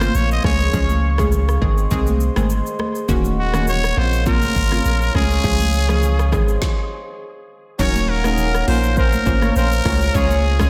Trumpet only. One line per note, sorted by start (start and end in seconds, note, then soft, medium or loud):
0.00 0.17 C5 loud
0.16 0.31 C#5 medium
0.32 0.44 D#5 medium
0.45 1.29 C#5 loud
3.39 3.66 F#4 medium
3.69 3.99 C#5 loud
3.98 4.27 C5 loud
4.27 5.11 A#4 loud
5.16 6.88 G#4 loud
7.81 8.11 C#5 loud
8.10 8.68 A#4 medium
8.69 8.96 C5 medium
8.98 9.52 A#4 loud
9.57 10.17 A#4 loud
10.16 10.70 G#4 loud